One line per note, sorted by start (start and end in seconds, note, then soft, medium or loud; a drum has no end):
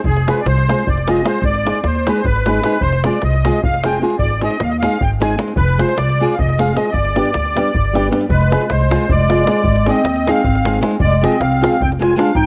0.04 0.29 F1 medium
0.04 0.29 G#4 loud
0.04 davul low medium
0.17 davul high soft
0.27 0.40 G#3 medium
0.27 0.41 C4 medium
0.27 0.41 F4 soft
0.27 0.41 G#4 medium
0.27 0.40 B4 medium
0.27 davul high medium
0.38 0.46 D5 medium
0.38 davul high soft
0.46 0.70 C2 medium
0.46 0.89 C5 loud
0.46 davul high medium
0.58 davul high soft
0.69 0.82 G#3 medium
0.69 0.82 C4 medium
0.69 0.82 F4 medium
0.69 0.83 G#4 medium
0.69 davul high medium
0.79 davul high soft
0.87 1.20 F1 medium
0.87 1.09 D5 medium
0.87 davul low medium
0.98 davul high soft
1.07 1.20 G#3 medium
1.07 1.21 C4 soft
1.07 1.21 F4 medium
1.07 1.21 G#4 medium
1.07 1.26 D#5 medium
1.07 davul high medium
1.17 davul high soft
1.24 1.38 G#3 medium
1.24 1.38 C4 medium
1.24 1.38 F4 medium
1.24 1.38 G#4 medium
1.24 1.44 C5 medium
1.24 davul high medium
1.34 davul high soft
1.42 1.67 G#1 medium
1.42 1.86 D5 loud
1.42 davul low medium
1.55 davul high soft
1.65 1.79 G#3 medium
1.65 1.79 C4 medium
1.65 1.79 D#4 soft
1.65 1.80 G#4 medium
1.65 davul high medium
1.75 davul high soft
1.84 2.08 D#2 medium
1.84 2.09 C5 medium
1.84 davul high medium
1.95 davul high soft
2.07 2.20 G#3 medium
2.07 2.20 C4 soft
2.07 2.21 D#4 medium
2.07 2.21 G#4 medium
2.07 2.19 B4 medium
2.07 davul high medium
2.16 2.25 C5 medium
2.16 davul high soft
2.24 2.58 G#1 medium
2.24 2.83 B4 loud
2.24 davul low medium
2.36 davul high soft
2.46 2.59 G#3 medium
2.46 2.59 C4 soft
2.46 2.60 D#4 soft
2.46 2.60 G#4 medium
2.46 davul high medium
2.63 2.76 G#3 medium
2.63 2.76 C4 medium
2.63 2.77 D#4 medium
2.63 2.77 G#4 medium
2.63 davul high medium
2.72 davul high soft
2.81 3.06 F1 medium
2.81 3.03 C5 loud
2.81 davul low medium
2.93 davul high soft
3.04 3.17 G#3 medium
3.04 3.18 C4 medium
3.04 3.18 F4 medium
3.04 3.18 G#4 medium
3.04 3.23 D5 medium
3.04 davul high medium
3.13 davul high soft
3.22 3.47 C2 medium
3.22 3.61 D#5 medium
3.22 davul high medium
3.33 davul high soft
3.44 3.58 G#3 medium
3.44 3.58 C4 medium
3.44 3.58 F4 medium
3.44 3.59 G#4 medium
3.44 davul high medium
3.54 davul high soft
3.63 3.97 F1 medium
3.63 3.85 F5 medium
3.63 davul low medium
3.74 davul high soft
3.83 3.97 G#3 medium
3.83 3.97 C4 medium
3.83 3.97 F4 medium
3.83 3.97 G#4 medium
3.83 4.01 G5 medium
3.83 davul high medium
3.92 davul high soft
4.01 4.14 G#3 medium
4.01 4.14 C4 medium
4.01 4.15 F4 medium
4.01 4.15 G#4 medium
4.10 davul high soft
4.19 4.44 G#1 medium
4.19 4.41 D5 loud
4.19 davul low medium
4.30 davul high soft
4.41 4.55 G#3 medium
4.41 4.55 C4 medium
4.41 4.55 D#4 medium
4.41 4.55 G#4 medium
4.41 4.62 D#5 loud
4.41 davul high medium
4.50 davul high soft
4.60 4.85 D#2 medium
4.60 4.70 F5 loud
4.60 davul high medium
4.69 4.77 D#5 medium
4.69 davul high soft
4.79 4.96 G#3 medium
4.79 4.96 C4 soft
4.79 4.96 D#4 medium
4.79 5.03 F5 loud
4.79 davul high medium
4.84 4.96 G#4 medium
4.92 davul high soft
5.01 5.35 G#1 medium
5.01 5.11 G5 medium
5.01 davul low medium
5.20 5.34 G#3 medium
5.20 5.34 C4 medium
5.20 5.34 D#4 medium
5.20 5.34 G#4 medium
5.20 5.38 G#5 medium
5.20 davul high medium
5.30 davul high soft
5.38 5.51 G#3 medium
5.38 5.51 C4 medium
5.38 5.52 D#4 medium
5.38 5.52 G#4 medium
5.38 davul high medium
5.48 davul high soft
5.56 5.81 F1 medium
5.56 5.81 B4 loud
5.56 davul low medium
5.69 davul high soft
5.78 5.92 G#3 medium
5.78 5.92 C4 medium
5.78 5.92 F4 soft
5.78 5.93 G#4 medium
5.78 5.98 C5 medium
5.78 davul high medium
5.89 davul high soft
5.97 6.22 C2 medium
5.97 6.35 D5 loud
5.97 davul high medium
6.09 davul high soft
6.20 6.33 G#3 medium
6.20 6.33 C4 medium
6.20 6.34 F4 medium
6.20 6.34 G#4 medium
6.30 6.38 F5 medium
6.30 davul high soft
6.39 6.72 F1 medium
6.39 6.60 D#5 medium
6.39 davul low medium
6.49 davul high soft
6.58 6.71 G#3 medium
6.58 6.71 C4 medium
6.58 6.72 F4 soft
6.58 6.72 G#4 medium
6.58 6.75 F5 medium
6.58 davul high medium
6.68 davul high soft
6.75 6.88 G#3 medium
6.75 6.89 C4 medium
6.75 6.89 F4 medium
6.75 6.89 G#4 medium
6.75 6.86 D#5 medium
6.75 davul high medium
6.86 6.93 D#5 medium
6.86 davul high soft
6.92 7.18 G1 medium
6.92 8.08 D5 loud
6.92 davul low medium
7.05 davul high soft
7.15 7.29 G3 medium
7.15 7.29 B3 soft
7.15 7.29 D4 medium
7.15 7.30 G4 medium
7.15 davul high medium
7.26 davul high soft
7.34 7.59 D2 medium
7.34 davul high medium
7.45 davul high soft
7.56 7.69 G3 medium
7.56 7.70 B3 medium
7.56 7.70 D4 medium
7.56 7.70 G4 medium
7.56 davul high medium
7.66 davul high soft
7.75 8.08 G1 medium
7.75 davul low medium
7.85 davul high soft
7.93 8.07 G3 medium
7.93 8.07 B3 medium
7.93 8.07 D4 medium
7.93 8.08 G4 medium
7.93 davul high medium
8.04 davul high soft
8.11 8.24 G3 medium
8.11 8.24 B3 medium
8.11 8.25 D4 medium
8.11 8.25 G4 medium
8.11 davul high medium
8.21 davul high soft
8.29 8.54 F1 medium
8.29 8.68 G#3 medium
8.29 8.72 B4 loud
8.29 davul low medium
8.41 davul high soft
8.51 8.65 G#3 medium
8.51 8.64 C4 soft
8.51 8.65 F4 medium
8.51 8.65 G#4 medium
8.51 davul high medium
8.61 davul high soft
8.70 8.95 C2 medium
8.70 9.08 G#3 medium
8.70 9.12 C5 medium
8.70 davul high medium
8.81 davul high soft
8.90 9.04 G#3 medium
8.90 9.05 C4 medium
8.90 9.05 F4 medium
8.90 9.05 G#4 medium
8.90 davul high medium
9.01 davul high soft
9.09 9.43 F1 medium
9.09 9.85 G#3 medium
9.09 9.90 D5 medium
9.09 davul low medium
9.20 davul high soft
9.29 9.42 G#3 medium
9.29 9.43 C4 soft
9.29 9.43 F4 medium
9.29 9.43 G#4 medium
9.29 davul high medium
9.39 davul high soft
9.47 9.60 G#3 medium
9.47 9.60 C4 medium
9.47 9.61 F4 medium
9.47 9.61 G#4 medium
9.47 davul high medium
9.57 davul high soft
9.64 9.88 G#1 medium
9.64 davul low medium
9.76 davul high soft
9.86 10.00 G#3 medium
9.86 10.00 C4 medium
9.86 10.26 C4 medium
9.86 10.00 D#4 medium
9.86 10.01 G#4 medium
9.86 10.30 D#5 medium
9.86 davul high medium
9.96 davul high soft
10.04 10.29 D#2 medium
10.04 davul high medium
10.16 davul high soft
10.27 10.40 G#3 medium
10.27 10.41 C4 medium
10.27 10.80 C4 medium
10.27 10.41 D#4 medium
10.27 10.41 G#4 medium
10.27 10.79 F5 medium
10.27 davul high medium
10.36 davul high soft
10.44 10.78 G#1 medium
10.44 davul low medium
10.55 davul high soft
10.65 10.78 G#3 medium
10.65 10.78 C4 medium
10.65 10.78 D#4 medium
10.65 10.79 G#4 medium
10.65 davul high medium
10.74 davul high soft
10.81 10.94 G#3 medium
10.81 10.95 C4 medium
10.81 10.95 D#4 medium
10.81 10.95 G#4 medium
10.81 davul high medium
10.91 davul high soft
11.00 11.24 F1 medium
11.00 11.22 G#3 medium
11.00 11.24 D5 loud
11.00 davul low medium
11.12 davul high soft
11.21 11.35 G#3 medium
11.21 11.35 C4 soft
11.21 11.40 C4 medium
11.21 11.36 F4 medium
11.21 11.36 G#4 medium
11.21 11.41 D#5 medium
11.21 davul high medium
11.32 davul high soft
11.40 11.64 C2 medium
11.40 11.79 C4 medium
11.40 11.82 F5 medium
11.40 davul high medium
11.52 davul high soft
11.61 11.75 G#3 medium
11.61 11.75 C4 medium
11.61 11.75 F4 medium
11.61 11.75 G#4 medium
11.61 davul high medium
11.73 davul high soft
11.80 12.13 F1 medium
11.80 11.91 C4 medium
11.80 11.90 G5 medium
11.80 davul low medium
11.92 davul high soft
11.99 12.12 G#3 medium
11.99 12.13 C4 medium
11.99 12.13 F4 medium
11.99 12.17 F4 medium
11.99 12.13 G#4 medium
11.99 12.18 G#5 medium
11.99 davul high medium
12.10 davul high soft
12.16 12.29 G#3 medium
12.16 12.30 C4 medium
12.16 12.33 D4 medium
12.16 12.30 F4 medium
12.16 12.30 G#4 medium
12.16 12.35 F5 medium
12.16 davul high medium
12.27 davul high soft
12.35 12.46 G#1 medium
12.35 12.46 D#4 medium
12.35 12.46 G5 loud
12.35 davul low medium